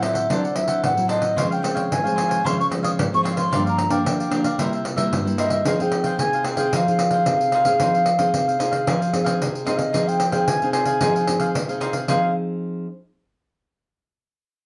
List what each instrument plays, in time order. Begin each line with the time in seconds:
Already playing: nylon-string guitar A2 F#3 C4 E4
0.01 cavaquinho D4 A4 C5 F#5, flute E5, pandeiro
0.13 cavaquinho A4 C5 F#5, pandeiro
0.29 nylon-string guitar D3 F#3 C4 E4, cavaquinho D4 A4 C5 F#5, flute D5, pandeiro
0.44 cavaquinho A4 C5 F#5, pandeiro
0.55 nylon-string guitar F#3 C4 E4, flute E5, muted cavaquinho stroke, pandeiro
0.67 cavaquinho A4 C5 F#5, pandeiro
0.83 nylon-string guitar A2, flute F#5, pandeiro
0.97 nylon-string guitar F#3 C4 E4, pandeiro
1.08 cavaquinho D4 A4 C5 F#5, flute D#5, pandeiro
1.21 cavaquinho A4 C5 F#5, pandeiro
1.36 nylon-string guitar C#3 F3 G#3 C4, cavaquinho F4 C5 C#5 F5, pandeiro
1.51 cavaquinho C5 C#5 F5, flute G5, pandeiro
1.62 nylon-string guitar F3 G#3 C4, muted cavaquinho stroke, pandeiro
1.75 cavaquinho C5 C#5 F5, pandeiro
1.90 nylon-string guitar G#2, flute G#5, pandeiro
2.04 nylon-string guitar F3 G#3 C4, cavaquinho C5 C#5 F5, pandeiro
2.15 cavaquinho F4 C5 C#5 F5, pandeiro
2.28 cavaquinho C5 C#5 F5, pandeiro
2.44 nylon-string guitar C#3 F3 G#3 C4, cavaquinho F4 C5 C#5 F5, flute C6, pandeiro
2.58 cavaquinho C5 C#5 F5, flute C#6, pandeiro
2.70 nylon-string guitar F3 G#3 C4, muted cavaquinho stroke, pandeiro
2.83 cavaquinho C5 C#5 F5, flute D#6, pandeiro
2.99 nylon-string guitar G#2, pandeiro
3.13 nylon-string guitar F3 G#3 C4, flute C#6, pandeiro
3.23 cavaquinho F4 C5 C#5 F5, pandeiro
3.36 cavaquinho C5 C#5 F5, flute C6, pandeiro
3.51 nylon-string guitar G2 F3 A#3 D4, cavaquinho G4 A#4 D5 F5, pandeiro
3.66 cavaquinho A#4 D5 F5, flute A#5, pandeiro
3.78 muted cavaquinho stroke, pandeiro
3.89 nylon-string guitar F3 A#3 D4, cavaquinho A#4 D5 F5, flute G5, pandeiro
4.05 nylon-string guitar D3, pandeiro
4.20 cavaquinho A#4 D5 F5, pandeiro
4.30 nylon-string guitar F3 A#3 D4, cavaquinho G4 A#4, pandeiro
4.34 cavaquinho D5 F5
4.44 cavaquinho A#4 D5 F5, pandeiro
4.58 nylon-string guitar C3 G3 A#3 E4, cavaquinho E4 A#4 C5 E5, pandeiro
4.73 cavaquinho A#4 C5 E5, pandeiro
4.85 muted cavaquinho stroke, pandeiro
4.96 nylon-string guitar G3 A#3 E4, cavaquinho A#4 C5 E5, pandeiro
5.11 nylon-string guitar G2, pandeiro
5.25 nylon-string guitar G3 A#3 E4, pandeiro
5.38 cavaquinho E4 A#4 C5 E5, flute D#5, pandeiro
5.50 cavaquinho A#4 C5 E5, pandeiro
5.65 nylon-string guitar F3 C4 D#4 G#4, cavaquinho D#4 G#4 C5 F5, pandeiro
5.79 nylon-string guitar C4 D#4 G#4, cavaquinho G#4 C5 F5, flute G5, pandeiro
5.92 muted cavaquinho stroke, pandeiro
6.04 cavaquinho G#4 C5 F5, pandeiro
6.18 nylon-string guitar C3 C4 D#4 G#4, flute G#5, pandeiro
6.33 cavaquinho G#4 C5 F5, pandeiro
6.45 cavaquinho D#4 G#4 C5 F5, flute G5, pandeiro
6.56 nylon-string guitar C4 D#4 G#4, cavaquinho G#4 C5 F5, pandeiro
6.72 nylon-string guitar F3, cavaquinho D#4 G#4 C5 F5, flute F5, pandeiro
6.87 nylon-string guitar C4 D#4 G#4, cavaquinho G#4 C5 F5, pandeiro
6.99 muted cavaquinho stroke, pandeiro
7.11 cavaquinho G#4 C5 F5, pandeiro
7.26 nylon-string guitar C3 C4 D#4 G#4, pandeiro
7.41 pandeiro
7.52 cavaquinho D#4 G#4 C5 F5, pandeiro
7.65 nylon-string guitar C4 D#4 G#4, cavaquinho G#4 C5 F5, pandeiro
7.80 nylon-string guitar F3 C4 D#4 G#4, cavaquinho D#4 G#4 C5 F5, pandeiro
7.95 cavaquinho G#4 C5 F5, pandeiro
8.06 muted cavaquinho stroke, pandeiro
8.18 nylon-string guitar C4 D#4 G#4, cavaquinho G#4 C5 F5, pandeiro
8.33 nylon-string guitar C3, pandeiro
8.47 cavaquinho G#4 C5 F5, pandeiro
8.59 nylon-string guitar C4 D#4 G#4, cavaquinho D#4 G#4 C5 F5, pandeiro
8.71 cavaquinho G#4 C5 F5, pandeiro
8.87 nylon-string guitar F3, cavaquinho D#4 G#4 C5 F5, pandeiro
9.00 cavaquinho G#4 C5 F5, pandeiro
9.13 nylon-string guitar C4 D#4 G#4, muted cavaquinho stroke, pandeiro
9.24 cavaquinho G#4 C5 F5, pandeiro
9.41 nylon-string guitar C3, pandeiro
9.55 pandeiro
9.65 nylon-string guitar C4 D#4 G#4, cavaquinho D#4 G#4 C5 F5, flute D#5, pandeiro
9.76 cavaquinho G#4 C5 F5, pandeiro
9.93 nylon-string guitar F3 C4 D#4 G#4, cavaquinho D#4 G#4 C5 F5, pandeiro
10.07 cavaquinho G#4 C5 F5, flute G5, pandeiro
10.20 pandeiro
10.32 nylon-string guitar C4 D#4 G#4, cavaquinho G#4 C5 F5, pandeiro
10.47 nylon-string guitar C3, flute G#5, pandeiro
10.62 nylon-string guitar C4 D#4 G#4, cavaquinho G#4 C5 F5, pandeiro
10.73 cavaquinho D#4 G#4 C5 F5, flute G#5, pandeiro
10.85 cavaquinho G#4 C5 F5, pandeiro
11.00 nylon-string guitar F3 C4 D#4 G#4, cavaquinho D#4 G#4 C5 F5, pandeiro
11.15 cavaquinho G#4 C5 F5, pandeiro
11.27 nylon-string guitar C4 D#4 G#4, muted cavaquinho stroke, pandeiro
11.39 cavaquinho G#4 C5 F5, pandeiro
11.54 nylon-string guitar C3, pandeiro
11.68 nylon-string guitar C4 D#4 G#4, cavaquinho G#4 C5 F5, pandeiro
11.80 cavaquinho D#4 G#4 C5 F5, pandeiro
11.93 cavaquinho G#4 C5 F5, pandeiro
12.07 nylon-string guitar F3 C4 D#4 G#4, cavaquinho D#4 G#4 C5 F5, flute F5, pandeiro